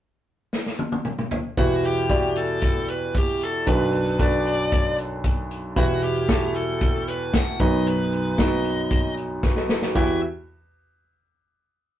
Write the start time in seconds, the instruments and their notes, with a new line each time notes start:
0.53 snare
0.66 snare
0.79 high tom
0.92 high tom
1.05 mid tom
1.19 mid tom
1.31 floor tom
1.57 grand piano E2 B2 E4 F#4 G4 B4, lead electric guitar F#4, kick, closed hi-hat
1.83 lead electric guitar G4, closed hi-hat
2.10 grand piano E4 F#4 G4 D5, kick, closed hi-hat
2.36 lead electric guitar A4, closed hi-hat
2.61 kick, closed hi-hat
2.88 lead electric guitar B4, closed hi-hat
3.15 lead electric guitar G4, kick, closed hi-hat
3.41 lead electric guitar A4, closed hi-hat
3.66 grand piano B1 F#2 D4 F#4 A4 B4, lead electric guitar B4, kick, closed hi-hat
3.93 closed hi-hat
4.06 closed hi-hat
4.19 grand piano D4 F#4 A4 B4, lead electric guitar D5, kick, closed hi-hat
4.46 closed hi-hat
4.72 kick, closed hi-hat
4.98 closed hi-hat
5.24 kick, closed hi-hat
5.51 closed hi-hat
5.76 grand piano E2 B2 E4 F#4 G4 B4, lead electric guitar F#4, kick, closed hi-hat
6.02 lead electric guitar G4, closed hi-hat
6.16 closed hi-hat
6.28 grand piano E4 F#4 G4 A4, kick, snare, closed hi-hat
6.55 lead electric guitar A4, closed hi-hat
6.81 kick, closed hi-hat
7.07 lead electric guitar B4, closed hi-hat
7.34 lead electric guitar F#5, kick, snare, closed hi-hat
7.60 grand piano B1 F#2 B3 D#4 F#4 B4, lead electric guitar D#5, kick, closed hi-hat
7.86 lead electric guitar B4, closed hi-hat
8.12 closed hi-hat
8.38 grand piano B3 D#4 F#4 B4, lead electric guitar D#5, kick, snare, closed hi-hat
8.64 closed hi-hat
8.90 kick, closed hi-hat
9.17 closed hi-hat
9.43 grand piano F#4 B4, kick, snare
9.56 grand piano A4 D#5, snare
9.69 grand piano A4 D#5, snare
9.82 grand piano F#4 B4, snare
9.95 grand piano E2 E4 F#4 G4 B4, lead electric guitar E5, kick, crash